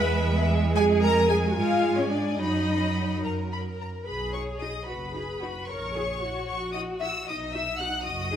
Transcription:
Already playing: double bass section E2, cello section G#3, viola section B4, violin section E5 B5
0.76 double bass section F2, viola section G#4, violin section G#5
1.02 viola section A#4, violin section A#5
1.29 viola section G#4, violin section G#5
1.49 viola section F#4
1.55 double bass section G#2, cello section G#3, viola section F4, violin section F5
1.97 viola section C#4, violin section C#5
2.10 viola section D4, violin section D5
2.36 double bass section F#2, cello section F#3, viola section D#4, violin section D#5 B5
3.24 double bass section F#2, violin section A#4 A#5
3.53 violin section B5
3.81 violin section A#5
4.05 double bass section B1, cello section G#4, violin section B4 B5
4.32 viola section D#4 F#4, violin section C#5 C#6
4.60 viola section D#4 F#4, violin section D#5 D#6
4.85 double bass section F#1, cello section F#4, violin section B4 B5
5.13 viola section D#4 F#4, cello section G#4
5.40 viola section D#4 F#4, cello section F#4
5.66 double bass section A#1, cello section A#4, violin section C#5 C#6
5.94 viola section E4 F#4, cello section G#4
6.20 viola section E4 F#4, cello section F#4
6.46 double bass section A#1, violin section C#5 C#6
6.72 viola section E4 F#4, violin section D#5 D#6
6.99 viola section E4 F#4, violin section E5 E6
7.26 double bass section B1, cello section D#4, violin section D#5 D#6
7.53 viola section D#4 F#4, violin section E5 E6
7.79 viola section D#4 F#4, violin section F#5 F#6
8.05 double bass section F#1, cello section F#4, violin section D#5 D#6
8.31 viola section D#4 F#4, cello section G#4

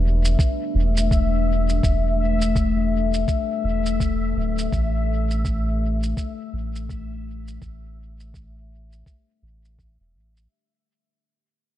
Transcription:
Already playing: sub bass E1, ambient pad A3 D4 G4 B4, synth texture E5
0.25 shaker
0.39 kick, shaker
0.75 sub bass E1
0.97 shaker
1.11 kick, shaker
1.69 shaker
1.83 sub bass E1, kick, shaker
2.41 shaker
2.56 kick, shaker
3.14 shaker
3.28 kick, shaker
3.64 sub bass E1
3.86 shaker
4.00 kick, shaker
4.36 sub bass D1
4.58 shaker
4.72 sub bass A1, kick, shaker
5.31 shaker
5.45 kick, shaker
6.03 shaker
6.17 kick, shaker
6.53 sub bass A1
6.75 shaker
6.89 kick, shaker
7.48 shaker
7.62 sub bass A1, kick, shaker
8.20 shaker
8.34 kick, shaker
8.92 shaker
9.06 kick, shaker
9.43 sub bass A1
9.65 shaker
9.78 sub bass A1, kick, shaker
10.00 sub bass E1
10.15 sub bass A1
10.37 shaker

